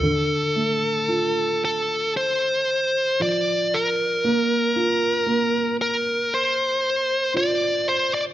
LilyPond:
<<
  \new Staff \with { instrumentName = "Lead electric guitar" } { \time 4/4 \key d \minor \tempo 4 = 58 a'4. a'8 c''4 d''8 bes'8~ | bes'4. bes'8 c''4 d''8 c''16 d''16 | }
  \new Staff \with { instrumentName = "Upright piano" } { \time 4/4 \key d \minor d8 a8 f'2 f4 | bes8 f'8 bes2 f'4 | }
>>